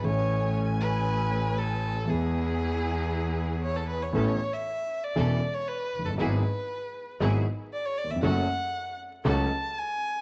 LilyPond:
<<
  \new Staff \with { instrumentName = "Violin" } { \time 4/4 \key a \major \tempo 4 = 118 cis''4 r8 b'4. a'4 | gis'2. cis''16 a'16 b'16 cis''16 | cis''8. e''4 d''4 cis''16 b'8. a'16 | b'2 r4 d''16 cis''16 d''16 e''16 |
fis''4. r8 a''4 gis''4 | }
  \new Staff \with { instrumentName = "String section" } { \time 4/4 \key a \major <a cis' gis''>1 | <b e' gis'>1 | <b cis' a'>8 r4. <b cis' a'>8 r4. | <e' fis' gis'>8 r4. <e' fis' gis'>8 r4. |
<cis' fis' a'>8 r4. <cis' fis' a'>8 r4. | }
  \new Staff \with { instrumentName = "Grand piano" } { \clef bass \time 4/4 \key a \major <a,, a, e a cis' a'>1 | <e, e gis b gis'>1 | <a,, a, e b cis' a'>8 r4. <e,, e, e b cis' a'>8 r4 r32 f,,32 fis,,32 g,,32 | <gis,, gis, fis b e' gis'>8 r4. <gis,, gis, fis b e' gis'>8 r4 r32 dis,32 e,32 f,32 |
<fis, fis a cis' a'>8 r4. <cis, cis fis a cis' a'>8 r4. | }
  \new Staff \with { instrumentName = "Double bass" } { \clef bass \time 4/4 \key a \major a,,1 | e,1 | a,,8 r4. e,,8 r4 fis,,8 | gis,,8 r4. gis,,8 r4. |
fis,,8 r4. cis,8 r4. | }
>>